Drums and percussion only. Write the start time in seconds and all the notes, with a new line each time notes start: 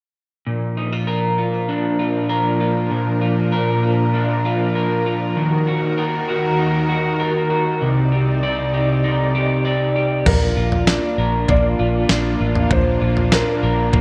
10.26 kick, floor tom, crash
10.72 floor tom
10.87 snare
11.48 kick, floor tom
12.09 snare
12.55 floor tom
12.71 kick, floor tom
13.17 floor tom
13.32 snare
13.93 kick, floor tom